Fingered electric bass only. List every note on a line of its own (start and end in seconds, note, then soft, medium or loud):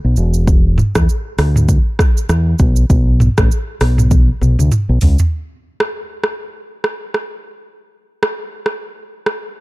0.04 0.15 B1 medium
0.17 0.80 E1 loud
0.95 1.06 E2 medium
1.38 1.76 D2 loud
2.29 2.53 E2 loud
2.60 2.84 B1 loud
2.90 3.28 B1 loud
3.38 3.48 A1 loud
3.81 4.29 B1 loud
4.41 4.55 B1 medium
4.59 4.69 D2 loud
4.89 4.99 B1 medium
5.02 5.16 C#2 medium